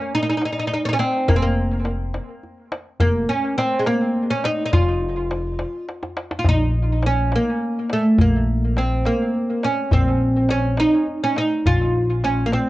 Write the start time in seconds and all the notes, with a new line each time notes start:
Already playing: C#4
0.15 D#4
0.23 D#4
0.30 D#4
0.37 D#4
0.42 D#4, tombak tek
0.53 D#4
0.60 D#4
0.68 D#4, tombak ka
0.74 D#4
0.85 C#4 D#4
0.93 C#4
0.99 C4, tombak tek
1.28 F1 A#3, tombak dum
1.36 C4
1.42 A#3
1.85 tombak tek
2.14 tombak tek
2.43 tombak ka
2.72 tombak tek
3.00 F1 A#3, tombak dum
3.29 C#4
3.58 C4, tombak tek
3.79 G#3
3.86 A#3, tombak tek
4.16 tombak ka
4.31 C#4
4.44 D#4, tombak tek
4.66 D#4
4.73 F1 F4, tombak dum
5.02 tombak ka
5.31 tombak tek
5.59 tombak tek
5.88 tombak tek
6.03 tombak ka
6.17 tombak tek
6.31 tombak ka
6.39 F4
6.45 A#1, tombak dum
6.49 D#4
6.74 tombak ka
7.02 C#4, tombak tek
7.32 A#3, tombak tek
7.89 A3, tombak tek
8.18 A#1 A#3, tombak dum
8.47 tombak ka
8.77 C4, tombak tek
9.05 A#3, tombak tek
9.34 tombak ka
9.63 C#4, tombak tek
9.91 A#1 C4, tombak dum
10.21 tombak ka
10.49 C#4, tombak tek
10.77 D#4, tombak tek
11.07 tombak ka
11.24 C#4
11.36 D#4, tombak tek
11.66 A#1 F4, tombak dum
11.96 tombak ka
12.24 C#4, tombak tek
12.46 A#3
12.52 C4, tombak tek